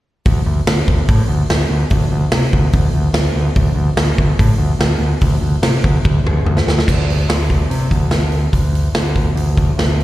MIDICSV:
0, 0, Header, 1, 3, 480
1, 0, Start_track
1, 0, Tempo, 414079
1, 304, Time_signature, 4, 2, 24, 8
1, 11636, End_track
2, 0, Start_track
2, 0, Title_t, "Picked electric bass"
2, 0, Program_c, 0, 34
2, 303, Note_on_c, 0, 38, 97
2, 454, Note_off_c, 0, 38, 0
2, 536, Note_on_c, 0, 38, 92
2, 689, Note_off_c, 0, 38, 0
2, 779, Note_on_c, 0, 38, 81
2, 931, Note_off_c, 0, 38, 0
2, 1015, Note_on_c, 0, 38, 93
2, 1169, Note_off_c, 0, 38, 0
2, 1263, Note_on_c, 0, 45, 85
2, 1413, Note_off_c, 0, 45, 0
2, 1487, Note_on_c, 0, 38, 92
2, 1642, Note_off_c, 0, 38, 0
2, 1736, Note_on_c, 0, 38, 90
2, 1889, Note_off_c, 0, 38, 0
2, 1967, Note_on_c, 0, 38, 84
2, 2122, Note_off_c, 0, 38, 0
2, 2209, Note_on_c, 0, 38, 101
2, 2364, Note_off_c, 0, 38, 0
2, 2454, Note_on_c, 0, 38, 97
2, 2607, Note_off_c, 0, 38, 0
2, 2693, Note_on_c, 0, 48, 83
2, 2846, Note_off_c, 0, 48, 0
2, 2935, Note_on_c, 0, 38, 93
2, 3087, Note_off_c, 0, 38, 0
2, 3169, Note_on_c, 0, 38, 82
2, 3323, Note_off_c, 0, 38, 0
2, 3407, Note_on_c, 0, 38, 79
2, 3561, Note_off_c, 0, 38, 0
2, 3632, Note_on_c, 0, 38, 98
2, 3791, Note_off_c, 0, 38, 0
2, 3881, Note_on_c, 0, 38, 87
2, 4037, Note_off_c, 0, 38, 0
2, 4130, Note_on_c, 0, 38, 99
2, 4283, Note_off_c, 0, 38, 0
2, 4345, Note_on_c, 0, 38, 91
2, 4506, Note_off_c, 0, 38, 0
2, 4601, Note_on_c, 0, 38, 90
2, 4757, Note_off_c, 0, 38, 0
2, 4849, Note_on_c, 0, 38, 89
2, 5002, Note_off_c, 0, 38, 0
2, 5096, Note_on_c, 0, 45, 98
2, 5246, Note_off_c, 0, 45, 0
2, 5313, Note_on_c, 0, 38, 90
2, 5471, Note_off_c, 0, 38, 0
2, 5554, Note_on_c, 0, 38, 87
2, 5711, Note_off_c, 0, 38, 0
2, 5779, Note_on_c, 0, 38, 79
2, 5941, Note_off_c, 0, 38, 0
2, 6049, Note_on_c, 0, 38, 101
2, 6201, Note_off_c, 0, 38, 0
2, 6273, Note_on_c, 0, 38, 87
2, 6430, Note_off_c, 0, 38, 0
2, 6521, Note_on_c, 0, 48, 89
2, 6676, Note_off_c, 0, 48, 0
2, 6770, Note_on_c, 0, 38, 90
2, 6922, Note_off_c, 0, 38, 0
2, 7012, Note_on_c, 0, 38, 86
2, 7163, Note_off_c, 0, 38, 0
2, 7233, Note_on_c, 0, 38, 83
2, 7390, Note_off_c, 0, 38, 0
2, 7473, Note_on_c, 0, 38, 94
2, 7630, Note_off_c, 0, 38, 0
2, 7723, Note_on_c, 0, 38, 81
2, 7877, Note_off_c, 0, 38, 0
2, 7970, Note_on_c, 0, 38, 85
2, 8170, Note_off_c, 0, 38, 0
2, 8207, Note_on_c, 0, 38, 84
2, 8408, Note_off_c, 0, 38, 0
2, 8444, Note_on_c, 0, 38, 81
2, 8846, Note_off_c, 0, 38, 0
2, 8928, Note_on_c, 0, 48, 82
2, 9129, Note_off_c, 0, 48, 0
2, 9169, Note_on_c, 0, 38, 72
2, 9370, Note_off_c, 0, 38, 0
2, 9400, Note_on_c, 0, 38, 90
2, 9805, Note_off_c, 0, 38, 0
2, 9889, Note_on_c, 0, 38, 83
2, 10291, Note_off_c, 0, 38, 0
2, 10373, Note_on_c, 0, 38, 82
2, 10773, Note_off_c, 0, 38, 0
2, 10844, Note_on_c, 0, 38, 83
2, 11249, Note_off_c, 0, 38, 0
2, 11332, Note_on_c, 0, 38, 81
2, 11636, Note_off_c, 0, 38, 0
2, 11636, End_track
3, 0, Start_track
3, 0, Title_t, "Drums"
3, 296, Note_on_c, 9, 46, 55
3, 300, Note_on_c, 9, 36, 107
3, 412, Note_off_c, 9, 46, 0
3, 416, Note_off_c, 9, 36, 0
3, 780, Note_on_c, 9, 38, 126
3, 780, Note_on_c, 9, 46, 68
3, 896, Note_off_c, 9, 38, 0
3, 896, Note_off_c, 9, 46, 0
3, 1020, Note_on_c, 9, 36, 82
3, 1136, Note_off_c, 9, 36, 0
3, 1259, Note_on_c, 9, 46, 64
3, 1261, Note_on_c, 9, 36, 117
3, 1375, Note_off_c, 9, 46, 0
3, 1377, Note_off_c, 9, 36, 0
3, 1740, Note_on_c, 9, 38, 97
3, 1740, Note_on_c, 9, 46, 58
3, 1856, Note_off_c, 9, 38, 0
3, 1856, Note_off_c, 9, 46, 0
3, 2203, Note_on_c, 9, 46, 60
3, 2215, Note_on_c, 9, 36, 107
3, 2319, Note_off_c, 9, 46, 0
3, 2331, Note_off_c, 9, 36, 0
3, 2687, Note_on_c, 9, 38, 121
3, 2687, Note_on_c, 9, 46, 60
3, 2803, Note_off_c, 9, 38, 0
3, 2803, Note_off_c, 9, 46, 0
3, 2935, Note_on_c, 9, 36, 81
3, 3050, Note_off_c, 9, 36, 0
3, 3161, Note_on_c, 9, 46, 53
3, 3172, Note_on_c, 9, 36, 111
3, 3277, Note_off_c, 9, 46, 0
3, 3288, Note_off_c, 9, 36, 0
3, 3642, Note_on_c, 9, 38, 107
3, 3642, Note_on_c, 9, 46, 54
3, 3758, Note_off_c, 9, 38, 0
3, 3758, Note_off_c, 9, 46, 0
3, 4125, Note_on_c, 9, 46, 48
3, 4128, Note_on_c, 9, 36, 107
3, 4240, Note_off_c, 9, 46, 0
3, 4244, Note_off_c, 9, 36, 0
3, 4605, Note_on_c, 9, 38, 124
3, 4605, Note_on_c, 9, 46, 62
3, 4721, Note_off_c, 9, 38, 0
3, 4721, Note_off_c, 9, 46, 0
3, 4850, Note_on_c, 9, 36, 82
3, 4966, Note_off_c, 9, 36, 0
3, 5093, Note_on_c, 9, 36, 104
3, 5100, Note_on_c, 9, 46, 68
3, 5209, Note_off_c, 9, 36, 0
3, 5216, Note_off_c, 9, 46, 0
3, 5571, Note_on_c, 9, 38, 105
3, 5571, Note_on_c, 9, 46, 54
3, 5687, Note_off_c, 9, 38, 0
3, 5687, Note_off_c, 9, 46, 0
3, 6040, Note_on_c, 9, 46, 54
3, 6048, Note_on_c, 9, 36, 95
3, 6156, Note_off_c, 9, 46, 0
3, 6164, Note_off_c, 9, 36, 0
3, 6526, Note_on_c, 9, 38, 111
3, 6526, Note_on_c, 9, 46, 69
3, 6642, Note_off_c, 9, 38, 0
3, 6642, Note_off_c, 9, 46, 0
3, 6772, Note_on_c, 9, 36, 81
3, 6888, Note_off_c, 9, 36, 0
3, 7014, Note_on_c, 9, 36, 114
3, 7130, Note_off_c, 9, 36, 0
3, 7263, Note_on_c, 9, 47, 68
3, 7379, Note_off_c, 9, 47, 0
3, 7493, Note_on_c, 9, 45, 76
3, 7609, Note_off_c, 9, 45, 0
3, 7614, Note_on_c, 9, 38, 76
3, 7730, Note_off_c, 9, 38, 0
3, 7747, Note_on_c, 9, 38, 96
3, 7863, Note_off_c, 9, 38, 0
3, 7866, Note_on_c, 9, 38, 87
3, 7975, Note_on_c, 9, 36, 96
3, 7981, Note_on_c, 9, 49, 97
3, 7982, Note_off_c, 9, 38, 0
3, 8091, Note_off_c, 9, 36, 0
3, 8097, Note_off_c, 9, 49, 0
3, 8232, Note_on_c, 9, 46, 54
3, 8348, Note_off_c, 9, 46, 0
3, 8460, Note_on_c, 9, 38, 117
3, 8460, Note_on_c, 9, 46, 78
3, 8576, Note_off_c, 9, 38, 0
3, 8576, Note_off_c, 9, 46, 0
3, 8694, Note_on_c, 9, 36, 77
3, 8704, Note_on_c, 9, 46, 53
3, 8810, Note_off_c, 9, 36, 0
3, 8820, Note_off_c, 9, 46, 0
3, 8938, Note_on_c, 9, 46, 70
3, 9054, Note_off_c, 9, 46, 0
3, 9171, Note_on_c, 9, 36, 74
3, 9175, Note_on_c, 9, 46, 55
3, 9287, Note_off_c, 9, 36, 0
3, 9291, Note_off_c, 9, 46, 0
3, 9403, Note_on_c, 9, 38, 85
3, 9403, Note_on_c, 9, 46, 67
3, 9519, Note_off_c, 9, 38, 0
3, 9519, Note_off_c, 9, 46, 0
3, 9642, Note_on_c, 9, 46, 54
3, 9758, Note_off_c, 9, 46, 0
3, 9889, Note_on_c, 9, 36, 86
3, 9889, Note_on_c, 9, 46, 69
3, 10005, Note_off_c, 9, 36, 0
3, 10005, Note_off_c, 9, 46, 0
3, 10143, Note_on_c, 9, 46, 58
3, 10259, Note_off_c, 9, 46, 0
3, 10373, Note_on_c, 9, 38, 115
3, 10373, Note_on_c, 9, 46, 74
3, 10489, Note_off_c, 9, 38, 0
3, 10489, Note_off_c, 9, 46, 0
3, 10615, Note_on_c, 9, 36, 77
3, 10627, Note_on_c, 9, 46, 53
3, 10731, Note_off_c, 9, 36, 0
3, 10743, Note_off_c, 9, 46, 0
3, 10864, Note_on_c, 9, 46, 65
3, 10980, Note_off_c, 9, 46, 0
3, 11099, Note_on_c, 9, 36, 82
3, 11106, Note_on_c, 9, 46, 51
3, 11215, Note_off_c, 9, 36, 0
3, 11222, Note_off_c, 9, 46, 0
3, 11349, Note_on_c, 9, 38, 97
3, 11349, Note_on_c, 9, 46, 56
3, 11465, Note_off_c, 9, 38, 0
3, 11465, Note_off_c, 9, 46, 0
3, 11596, Note_on_c, 9, 46, 42
3, 11636, Note_off_c, 9, 46, 0
3, 11636, End_track
0, 0, End_of_file